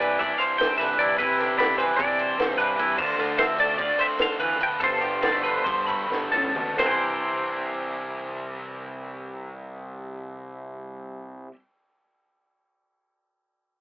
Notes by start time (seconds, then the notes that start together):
Already playing: C2 C3 D4 E4
0.00 E3 G3 C4 E4 B4 D5, ride
0.19 C3 G3 C4 D4 E4 D5 E5, kick, ride
0.38 C5 F5, ride
0.58 G2 C3 G3 C4 E4 G5, snare, ride
0.78 C2 G3 C4 D4 E4 B4 E5, snare, ride
0.98 C2 C3 G3 C4 E4 D5, ride
1.17 C3 G3 C4 E4 B4, kick, ride
1.38 G3 C4 D4 E4 G4, snare, ride
1.58 C3 G3 C4 E4 B4 D5, snare, ride
1.78 E3 G3 C4 E4 B4 C5, ride
1.97 C3 G3 C4 D4 D5, kick, ride
2.01 E4
2.18 C5, ride
2.37 C2 G2 C3 G3 C4 E4, snare, ride
2.53 C5
2.57 C2 G3 C4 D4 E4 B4, ride
2.77 G2 C3 G3 C4 E4, ride
2.97 D2 D3 F3 A3 D4 F4 C5, kick, crash
3.17 D2 A3 D4 F4 A4, snare, ride
3.21 F3
3.37 D3 F3 A3 C4 D4 C5 E5, snare, ride
3.57 F3 A3 D4 C5 D5, snare, ride
3.77 D3 F3 A3 D4 F4 D5, kick, ride
3.99 C4 C5 E5, ride
4.18 D3 F3 A3 D4, snare, ride
4.22 F5
4.37 D2 E3 F3 A3 D4 B4, ride
4.59 D2 D3 F3 A3 D4, ride
4.63 G5
4.79 G1 G2 D3 F3 B3 D4 F4 A4, kick, ride
4.84 C5
5.00 F3 B3 D4 G4, ride
5.21 D3 F3 G3 B3 D4 D5, snare, ride
5.32 A3
5.42 D3 F3 B3 D4 B4, ride
5.64 G2 D3 F3 B3 D4 C5, kick, ride
5.87 A3 B5, ride
6.09 G1 G2 D3 F3 B3 D4, snare
6.31 G1 A2 F3 B3 D4 A4, high tom
6.44 mid tom
6.54 D2 G2 B2 D3 F3 B3 D4, mid tom
6.78 C2 C3 E3 G3 C4 E4 C5, snare, ride bell
6.83 D4 G4 E5 G5
6.87 E4 C6